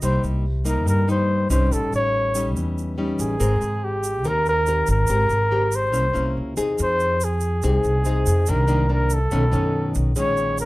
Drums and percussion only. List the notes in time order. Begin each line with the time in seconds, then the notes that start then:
0.02 shaker
0.24 shaker
0.65 shaker
0.88 shaker
1.09 shaker
1.50 shaker
1.72 shaker
1.93 shaker
2.35 shaker
2.56 shaker
2.78 shaker
3.19 shaker
3.40 shaker
3.61 shaker
4.04 shaker
4.24 shaker
4.46 shaker
4.66 shaker
4.87 shaker
5.07 shaker
5.30 shaker
5.72 shaker
5.94 shaker
6.15 shaker
6.57 shaker
6.78 shaker
7.00 shaker
7.21 shaker
7.41 shaker
7.62 shaker
7.84 shaker
8.05 shaker
8.26 shaker
8.46 shaker
8.68 shaker
9.10 shaker
9.31 shaker
9.53 shaker
9.95 shaker
10.16 shaker
10.37 shaker
10.58 shaker